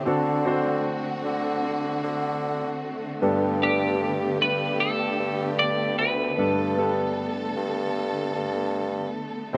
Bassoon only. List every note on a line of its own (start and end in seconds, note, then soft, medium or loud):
0.06 0.94 D3 medium
1.25 2.00 D3 medium
2.04 2.79 D3 medium
3.22 4.37 G2 medium
4.41 5.16 G2 medium
5.19 5.94 G2 medium
5.98 6.39 D2 medium
6.38 7.25 G2 medium
7.57 8.32 G2 medium
8.35 9.10 G2 medium
9.54 9.57 C3 medium